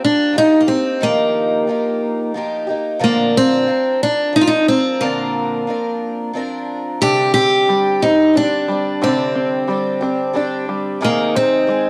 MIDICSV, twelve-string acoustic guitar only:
0, 0, Header, 1, 2, 480
1, 0, Start_track
1, 0, Key_signature, -3, "major"
1, 0, Tempo, 666667
1, 726, Time_signature, 3, 2, 24, 8
1, 8567, End_track
2, 0, Start_track
2, 0, Title_t, "Twelve-string acoustic guitar"
2, 0, Program_c, 0, 25
2, 0, Note_on_c, 0, 53, 47
2, 0, Note_on_c, 0, 58, 47
2, 0, Note_on_c, 0, 67, 49
2, 231, Note_off_c, 0, 53, 0
2, 234, Note_on_c, 0, 53, 51
2, 240, Note_off_c, 0, 58, 0
2, 243, Note_on_c, 0, 58, 57
2, 250, Note_off_c, 0, 67, 0
2, 252, Note_on_c, 0, 63, 54
2, 259, Note_on_c, 0, 67, 58
2, 471, Note_off_c, 0, 67, 0
2, 479, Note_on_c, 0, 67, 45
2, 480, Note_off_c, 0, 53, 0
2, 484, Note_off_c, 0, 58, 0
2, 485, Note_off_c, 0, 63, 0
2, 493, Note_on_c, 0, 63, 40
2, 505, Note_on_c, 0, 58, 38
2, 723, Note_off_c, 0, 67, 0
2, 724, Note_on_c, 0, 51, 70
2, 726, Note_off_c, 0, 58, 0
2, 730, Note_off_c, 0, 63, 0
2, 732, Note_on_c, 0, 53, 69
2, 735, Note_on_c, 0, 58, 73
2, 738, Note_on_c, 0, 63, 71
2, 744, Note_on_c, 0, 67, 77
2, 1201, Note_off_c, 0, 53, 0
2, 1204, Note_on_c, 0, 53, 43
2, 1205, Note_off_c, 0, 51, 0
2, 1210, Note_off_c, 0, 58, 0
2, 1212, Note_off_c, 0, 63, 0
2, 1213, Note_on_c, 0, 58, 51
2, 1215, Note_off_c, 0, 67, 0
2, 1220, Note_on_c, 0, 63, 54
2, 1228, Note_on_c, 0, 67, 55
2, 1683, Note_off_c, 0, 53, 0
2, 1686, Note_on_c, 0, 53, 60
2, 1693, Note_off_c, 0, 58, 0
2, 1693, Note_off_c, 0, 63, 0
2, 1696, Note_on_c, 0, 58, 61
2, 1697, Note_off_c, 0, 67, 0
2, 1705, Note_on_c, 0, 63, 65
2, 1710, Note_on_c, 0, 67, 68
2, 1913, Note_off_c, 0, 67, 0
2, 1921, Note_on_c, 0, 67, 49
2, 1926, Note_off_c, 0, 53, 0
2, 1927, Note_off_c, 0, 63, 0
2, 1931, Note_off_c, 0, 58, 0
2, 1936, Note_on_c, 0, 63, 50
2, 1947, Note_on_c, 0, 58, 42
2, 2155, Note_on_c, 0, 46, 73
2, 2156, Note_on_c, 0, 50, 75
2, 2162, Note_off_c, 0, 58, 0
2, 2163, Note_off_c, 0, 63, 0
2, 2163, Note_on_c, 0, 53, 79
2, 2164, Note_off_c, 0, 67, 0
2, 2165, Note_on_c, 0, 60, 74
2, 2165, Note_on_c, 0, 62, 77
2, 2170, Note_on_c, 0, 70, 82
2, 2632, Note_off_c, 0, 53, 0
2, 2641, Note_off_c, 0, 46, 0
2, 2641, Note_off_c, 0, 50, 0
2, 2641, Note_on_c, 0, 53, 48
2, 2645, Note_off_c, 0, 60, 0
2, 2648, Note_on_c, 0, 60, 46
2, 2649, Note_off_c, 0, 70, 0
2, 2652, Note_off_c, 0, 62, 0
2, 2655, Note_on_c, 0, 62, 51
2, 2665, Note_on_c, 0, 70, 52
2, 3106, Note_off_c, 0, 53, 0
2, 3115, Note_on_c, 0, 53, 58
2, 3124, Note_off_c, 0, 60, 0
2, 3127, Note_on_c, 0, 60, 50
2, 3133, Note_off_c, 0, 62, 0
2, 3135, Note_on_c, 0, 62, 63
2, 3136, Note_off_c, 0, 70, 0
2, 3144, Note_on_c, 0, 70, 60
2, 3601, Note_off_c, 0, 53, 0
2, 3610, Note_on_c, 0, 46, 73
2, 3613, Note_on_c, 0, 50, 74
2, 3616, Note_off_c, 0, 70, 0
2, 3617, Note_off_c, 0, 60, 0
2, 3618, Note_on_c, 0, 53, 77
2, 3620, Note_off_c, 0, 62, 0
2, 3620, Note_on_c, 0, 60, 76
2, 3623, Note_on_c, 0, 62, 80
2, 3627, Note_on_c, 0, 70, 82
2, 4076, Note_off_c, 0, 53, 0
2, 4084, Note_on_c, 0, 53, 45
2, 4089, Note_off_c, 0, 46, 0
2, 4090, Note_off_c, 0, 50, 0
2, 4091, Note_off_c, 0, 60, 0
2, 4094, Note_on_c, 0, 60, 49
2, 4097, Note_off_c, 0, 70, 0
2, 4100, Note_off_c, 0, 62, 0
2, 4103, Note_on_c, 0, 62, 52
2, 4109, Note_on_c, 0, 70, 56
2, 4552, Note_off_c, 0, 53, 0
2, 4561, Note_on_c, 0, 53, 56
2, 4567, Note_off_c, 0, 60, 0
2, 4570, Note_on_c, 0, 60, 54
2, 4575, Note_off_c, 0, 62, 0
2, 4577, Note_off_c, 0, 70, 0
2, 4578, Note_on_c, 0, 62, 68
2, 4586, Note_on_c, 0, 70, 75
2, 5045, Note_off_c, 0, 53, 0
2, 5046, Note_on_c, 0, 48, 67
2, 5052, Note_on_c, 0, 55, 64
2, 5056, Note_off_c, 0, 60, 0
2, 5056, Note_off_c, 0, 62, 0
2, 5057, Note_off_c, 0, 70, 0
2, 5058, Note_on_c, 0, 62, 71
2, 5059, Note_on_c, 0, 60, 68
2, 5065, Note_on_c, 0, 67, 74
2, 5520, Note_off_c, 0, 55, 0
2, 5527, Note_off_c, 0, 48, 0
2, 5528, Note_on_c, 0, 55, 45
2, 5533, Note_off_c, 0, 60, 0
2, 5533, Note_off_c, 0, 62, 0
2, 5536, Note_on_c, 0, 60, 50
2, 5537, Note_off_c, 0, 67, 0
2, 5544, Note_on_c, 0, 62, 53
2, 5551, Note_on_c, 0, 67, 54
2, 5754, Note_off_c, 0, 67, 0
2, 5762, Note_on_c, 0, 67, 39
2, 5768, Note_off_c, 0, 55, 0
2, 5772, Note_off_c, 0, 60, 0
2, 5776, Note_off_c, 0, 62, 0
2, 5788, Note_on_c, 0, 60, 36
2, 6002, Note_on_c, 0, 55, 53
2, 6005, Note_off_c, 0, 60, 0
2, 6005, Note_off_c, 0, 67, 0
2, 6013, Note_on_c, 0, 60, 55
2, 6019, Note_on_c, 0, 62, 57
2, 6026, Note_on_c, 0, 67, 64
2, 6243, Note_off_c, 0, 67, 0
2, 6245, Note_off_c, 0, 55, 0
2, 6251, Note_off_c, 0, 60, 0
2, 6252, Note_on_c, 0, 67, 44
2, 6254, Note_off_c, 0, 62, 0
2, 6261, Note_on_c, 0, 62, 41
2, 6275, Note_on_c, 0, 60, 38
2, 6490, Note_off_c, 0, 67, 0
2, 6491, Note_on_c, 0, 48, 67
2, 6495, Note_off_c, 0, 60, 0
2, 6495, Note_off_c, 0, 62, 0
2, 6497, Note_on_c, 0, 55, 69
2, 6504, Note_on_c, 0, 60, 72
2, 6505, Note_on_c, 0, 62, 76
2, 6508, Note_on_c, 0, 67, 84
2, 6957, Note_off_c, 0, 55, 0
2, 6966, Note_on_c, 0, 55, 46
2, 6970, Note_off_c, 0, 48, 0
2, 6971, Note_off_c, 0, 60, 0
2, 6974, Note_on_c, 0, 60, 47
2, 6977, Note_off_c, 0, 62, 0
2, 6978, Note_off_c, 0, 67, 0
2, 6984, Note_on_c, 0, 62, 51
2, 6991, Note_on_c, 0, 67, 52
2, 7197, Note_off_c, 0, 67, 0
2, 7205, Note_on_c, 0, 67, 49
2, 7207, Note_off_c, 0, 55, 0
2, 7211, Note_off_c, 0, 60, 0
2, 7213, Note_off_c, 0, 62, 0
2, 7221, Note_on_c, 0, 62, 43
2, 7230, Note_on_c, 0, 60, 45
2, 7440, Note_on_c, 0, 55, 61
2, 7441, Note_off_c, 0, 60, 0
2, 7446, Note_off_c, 0, 67, 0
2, 7450, Note_on_c, 0, 60, 69
2, 7452, Note_off_c, 0, 62, 0
2, 7460, Note_on_c, 0, 62, 73
2, 7465, Note_on_c, 0, 67, 76
2, 7923, Note_off_c, 0, 55, 0
2, 7924, Note_on_c, 0, 48, 73
2, 7928, Note_on_c, 0, 56, 73
2, 7931, Note_off_c, 0, 60, 0
2, 7933, Note_off_c, 0, 62, 0
2, 7934, Note_on_c, 0, 60, 83
2, 7936, Note_off_c, 0, 67, 0
2, 7939, Note_on_c, 0, 63, 73
2, 7941, Note_on_c, 0, 68, 86
2, 8394, Note_off_c, 0, 56, 0
2, 8403, Note_on_c, 0, 56, 51
2, 8405, Note_off_c, 0, 48, 0
2, 8409, Note_off_c, 0, 60, 0
2, 8412, Note_on_c, 0, 60, 54
2, 8413, Note_off_c, 0, 68, 0
2, 8426, Note_on_c, 0, 68, 54
2, 8567, Note_off_c, 0, 56, 0
2, 8567, Note_off_c, 0, 60, 0
2, 8567, Note_off_c, 0, 63, 0
2, 8567, Note_off_c, 0, 68, 0
2, 8567, End_track
0, 0, End_of_file